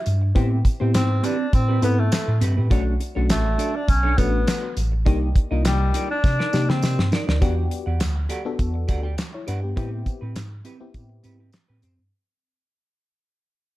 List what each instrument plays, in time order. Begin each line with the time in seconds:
0.06 tine electric piano G2, closed hi-hat, tambourine
0.21 muted clean electric guitar stroke
0.35 tine electric piano A2, fm electric piano B3 C4 E4 G4, clean electric guitar C4 G4 C5, kick, closed hi-hat
0.51 muted clean electric guitar stroke
0.65 muted clean electric guitar stroke, kick, closed hi-hat, tambourine
0.80 tine electric piano A2, fm electric piano B3 C4 E4 G4, clean electric guitar C4 G4 C5
0.94 tine electric piano G#2, alto saxophone C4, muted clean electric guitar stroke, snare, clap, closed hi-hat, tambourine
1.10 muted clean electric guitar stroke
1.23 clean electric guitar C4 G4 B4, alto saxophone D4, closed hi-hat, tambourine
1.39 muted clean electric guitar stroke
1.53 tine electric piano A2, alto saxophone C4, muted clean electric guitar stroke, kick, closed hi-hat, tambourine
1.68 clean electric guitar C4 G4 B4
1.82 tine electric piano G#2, fm electric piano B3 C4 E4 A4, alto saxophone B3, clean electric guitar C4 G4 B4, closed hi-hat, tambourine
1.98 alto saxophone A3, muted clean electric guitar stroke
2.12 muted clean electric guitar stroke, snare, clap, closed hi-hat, tambourine
2.27 tine electric piano A2, muted clean electric guitar stroke
2.41 tine electric piano G2, clean electric guitar C4 G4 B4, closed hi-hat, tambourine
2.57 tine electric piano A2, clean electric guitar C4 G4 B4
2.70 tine electric piano B1, fm electric piano A3 C#4 D4 F#4, clean electric guitar D4 A4 C#5, kick, closed hi-hat, tambourine
2.86 muted clean electric guitar stroke
3.00 muted clean electric guitar stroke, closed hi-hat, tambourine
3.15 tine electric piano B1, fm electric piano A3 C#4 D4 F#4, clean electric guitar D4 A4 C#5
3.29 tine electric piano A1, alto saxophone A3, muted clean electric guitar stroke, snare, clap, closed hi-hat, tambourine
3.45 muted clean electric guitar stroke
3.58 clean electric guitar D4 A4 D5, closed hi-hat, tambourine
3.74 alto saxophone D4, muted clean electric guitar stroke
3.88 tine electric piano B1, alto saxophone C#4, muted clean electric guitar stroke, kick, closed hi-hat, tambourine
4.03 clean electric guitar D4 A4 C#5
4.17 tine electric piano A1, fm electric piano A3 C#4 D4 F#4, alto saxophone B3, clean electric guitar D4 A4 C#5, kick, closed hi-hat, tambourine
4.33 muted clean electric guitar stroke
4.47 muted clean electric guitar stroke, snare, clap, closed hi-hat, tambourine
4.62 muted clean electric guitar stroke
4.77 tine electric piano A1, closed hi-hat, tambourine
4.92 muted clean electric guitar stroke
5.05 tine electric piano C2, fm electric piano A#3 D4 D#4 G4, clean electric guitar D#4 A#4 D#5, kick, closed hi-hat
5.21 muted clean electric guitar stroke
5.35 muted clean electric guitar stroke, kick, closed hi-hat
5.51 tine electric piano C2, fm electric piano A#3 D4 D#4 F4, clean electric guitar D#4 A#4 D#5
5.65 tine electric piano C2, alto saxophone G3, muted clean electric guitar stroke, snare, clap, closed hi-hat, tambourine
5.81 muted clean electric guitar stroke
5.94 clean electric guitar D#4 A#4 D5, closed hi-hat, tambourine
6.10 alto saxophone D4, muted clean electric guitar stroke
6.24 tine electric piano C3, muted clean electric guitar stroke, kick, snare, tambourine
6.39 clean electric guitar D#4 A#4 D5, snare
6.53 tine electric piano C3, fm electric piano A#3 D4 D#4 G4, clean electric guitar D#4 A#4 D5, snare, tambourine
6.69 tine electric piano C#3, alto saxophone C4, muted clean electric guitar stroke, snare
6.82 tine electric piano C3, muted clean electric guitar stroke, snare, tambourine
6.98 tine electric piano G2, muted clean electric guitar stroke, snare
7.12 clean electric guitar D#4 A#4 D5, snare, tambourine
7.27 tine electric piano D2, clean electric guitar D#4 A#4 D5, snare
7.41 tine electric piano E2, fm electric piano B3 D4 F#4 G4, clean electric guitar G4 D5 F#5, kick, closed hi-hat, tambourine
7.57 muted clean electric guitar stroke
7.71 muted clean electric guitar stroke, closed hi-hat, tambourine
7.86 tine electric piano E2, clean electric guitar G4 D5 F#5
8.00 tine electric piano D2, snare, clap, closed hi-hat, tambourine
8.16 muted clean electric guitar stroke
8.29 fm electric piano F#4 A4, clean electric guitar G4 D5 F#5, closed hi-hat, tambourine
8.45 fm electric piano B3 D4 F#4 A4, muted clean electric guitar stroke
8.59 tine electric piano E2, muted clean electric guitar stroke, kick, closed hi-hat, tambourine
8.74 muted clean electric guitar stroke
8.88 tine electric piano D2, clean electric guitar G4 D5 F#5, kick, closed hi-hat, tambourine
9.03 clean electric guitar G4 D5 G5
9.17 muted clean electric guitar stroke, snare, clap, closed hi-hat, tambourine
9.33 fm electric piano E4 C#5, muted clean electric guitar stroke
9.47 tine electric piano G2, fm electric piano D4 B4, clean electric guitar G4 D5 F#5, closed hi-hat, tambourine
9.62 fm electric piano B3 G4, muted clean electric guitar stroke
9.76 tine electric piano A2, fm electric piano B3 C4 E4 G4, clean electric guitar C4 G4 B4, kick, closed hi-hat, tambourine
9.92 muted clean electric guitar stroke
10.06 muted clean electric guitar stroke, kick, closed hi-hat, tambourine
10.21 tine electric piano A2, clean electric guitar C4 G4 B4
10.36 tine electric piano G#2, snare, clap, closed hi-hat, tambourine
10.51 muted clean electric guitar stroke
10.64 clean electric guitar C4 G4 B4, fm electric piano E4 G4, closed hi-hat, tambourine
10.80 fm electric piano B3 C4 E4 G4, muted clean electric guitar stroke
10.94 tine electric piano A2, muted clean electric guitar stroke, kick, closed hi-hat, tambourine
11.09 muted clean electric guitar stroke
11.23 tine electric piano G#2, clean electric guitar C4 G4 B4, closed hi-hat, tambourine
11.39 clean electric guitar C4 G4 B4
11.52 muted clean electric guitar stroke, snare, clap, closed hi-hat, tambourine
11.68 tine electric piano A2, clean electric guitar C4 G4 B4
11.82 tine electric piano F#2, clean electric guitar C4 G4 C5, closed hi-hat, tambourine
11.98 tine electric piano G2, muted clean electric guitar stroke